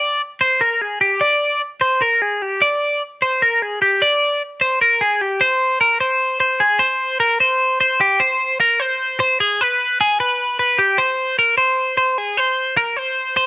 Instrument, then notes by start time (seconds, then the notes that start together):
clean electric guitar
Already playing: D5
0.41 C5
0.61 A#4
0.81 G#4
1.01 G4
1.21 D5
1.81 C5
2.02 A#4
2.22 G#4
2.42 G4
2.62 D5
3.22 C5
3.42 A#4
3.62 G#4
3.82 G4
4.02 D5
4.61 C5
4.82 A#4
5.01 G#4
5.21 G4
5.41 C5
5.81 A#4
6.00 C5
6.40 C5
6.60 G#4
6.79 C5
7.20 A#4
7.40 C5
7.80 C5
8.01 G4
8.20 C5
8.60 A#4
8.80 C5
9.20 C5
9.40 G#4
9.61 B4
10.01 G#4
10.20 B4
10.60 B4
10.79 G4
10.98 C5
11.39 A#4
11.58 C5
11.98 C5
12.18 G#4
12.37 C5
12.77 A#4
12.96 C5
13.37 C5